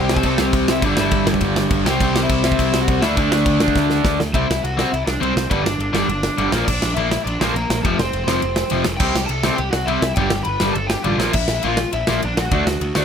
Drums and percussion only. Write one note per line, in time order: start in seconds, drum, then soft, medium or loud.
0.09 snare loud
0.17 kick medium
0.23 kick loud
0.23 crash medium
0.38 snare loud
0.53 kick loud
0.53 crash medium
0.68 snare loud
0.82 kick loud
0.82 crash medium
0.97 snare loud
1.11 kick loud
1.11 crash medium
1.27 snare loud
1.34 kick medium
1.41 kick loud
1.41 crash medium
1.56 snare loud
1.71 kick loud
1.71 crash medium
1.86 snare loud
2.01 kick loud
2.01 crash medium
2.16 snare loud
2.29 kick loud
2.29 crash medium
2.44 snare loud
2.52 kick medium
2.59 kick loud
2.59 crash medium
2.74 snare loud
2.88 kick loud
2.88 crash medium
3.02 snare loud
3.17 kick loud
3.17 crash medium
3.32 snare loud
3.46 kick loud
3.46 crash medium
3.60 snare loud
3.68 kick medium
3.76 kick loud
3.76 snare medium
3.90 snare medium
4.05 kick loud
4.05 snare loud
4.20 snare loud
4.34 kick loud
4.34 ride medium
4.51 snare loud
4.64 ride medium
4.79 snare loud
4.94 ride medium
5.07 snare loud
5.23 ride medium
5.37 snare loud
5.51 kick loud
5.51 ride medium
5.66 snare loud
5.80 ride medium
5.95 snare loud
6.09 ride medium
6.23 snare loud
6.38 ride medium
6.52 snare loud
6.68 kick loud
6.68 crash loud
6.82 snare loud
6.96 ride medium
7.11 snare loud
7.27 ride medium
7.41 snare loud
7.56 ride medium
7.70 snare loud
7.85 kick loud
7.85 ride medium
7.99 snare loud
8.13 ride medium
8.28 snare loud
8.42 ride medium
8.56 snare loud
8.70 ride medium
8.84 snare loud
9.00 kick loud
9.00 crash loud
9.16 snare loud
9.29 ride medium
9.43 snare loud
9.58 ride medium
9.73 snare loud
9.88 ride medium
10.02 snare loud
10.16 kick loud
10.16 ride medium
10.30 snare loud
10.45 ride medium
10.60 snare loud
10.75 ride medium
10.90 snare loud
11.04 ride medium
11.20 snare loud
11.33 kick loud
11.33 crash loud
11.48 snare loud
11.63 ride medium
11.77 snare loud
11.93 ride medium
12.07 snare loud
12.22 ride medium
12.37 snare loud
12.51 kick loud
12.51 ride medium
12.67 snare loud
12.81 ride medium
12.95 snare loud